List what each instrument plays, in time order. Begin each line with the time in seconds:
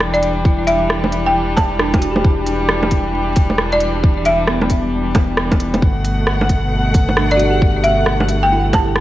Already playing: sub bass E1, string section E3 G3 D4, tine electric piano D4
0.00 cross-stick
0.14 marimba D5, closed hi-hat
0.23 closed hi-hat
0.45 tine electric piano E4, kick
0.67 marimba E5, closed hi-hat
0.90 cross-stick
1.04 low bongo
1.12 closed hi-hat
1.26 marimba G5
1.57 marimba A5, kick, closed hi-hat, low bongo
1.79 tine electric piano D4, cross-stick
1.94 kick, closed hi-hat, low bongo
1.98 tine electric piano F#4, closed hi-hat
2.11 tine electric piano G4
2.16 low bongo
2.24 kick
2.46 closed hi-hat
2.69 cross-stick
2.83 low bongo
2.91 kick, closed hi-hat
3.36 kick, closed hi-hat
3.50 low bongo
3.58 cross-stick
3.72 marimba D5, closed hi-hat
3.80 closed hi-hat
4.04 kick
4.25 marimba E5, closed hi-hat
4.47 tine electric piano B3, cross-stick
4.62 low bongo
4.70 kick, closed hi-hat
5.15 kick, closed hi-hat, low bongo
5.37 cross-stick
5.52 kick, closed hi-hat, low bongo
5.60 closed hi-hat
5.74 closed hi-hat, low bongo
5.81 sub bass G1, string section B2 A3 F#5, kick
6.05 closed hi-hat
6.27 cross-stick
6.41 low bongo
6.49 kick, closed hi-hat
6.94 kick, closed hi-hat
7.09 low bongo
7.17 tine electric piano D4, cross-stick
7.31 marimba D5, closed hi-hat
7.37 tine electric piano F#4, closed hi-hat
7.51 tine electric piano G4
7.62 kick
7.84 marimba E5, closed hi-hat
8.06 cross-stick
8.20 low bongo
8.29 closed hi-hat
8.43 marimba G5
8.52 tine electric piano E4
8.72 tine electric piano G4, marimba A5, kick, closed hi-hat, low bongo
8.85 tine electric piano A4
8.96 cross-stick